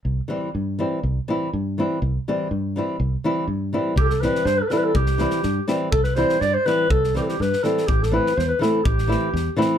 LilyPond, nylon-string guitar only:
\new Staff \with { instrumentName = "Nylon-string guitar" } { \time 2/4 \key c \major \tempo 4 = 123 r8 <e g c' e'>8 r8 <e g c' e'>8 | r8 <e g c' e'>8 r8 <e g c' e'>8 | r8 <e g c' e'>8 r8 <e g c' e'>8 | r8 <e g c' e'>8 r8 <e g c' e'>8 |
r8 <e g c' e'>8 r8 <e g c' e'>8 | r8 <e g c' e'>8 r8 <e g c' e'>8 | r8 <e g c' e'>8 r8 <e g c' e'>8 | r8 <e g c' e'>8 r8 <e g c' e'>8 |
r8 <e a c' e'>8 r8 <e a c' e'>8 | r8 <e a c' e'>8 r8 <e a c' e'>8 | }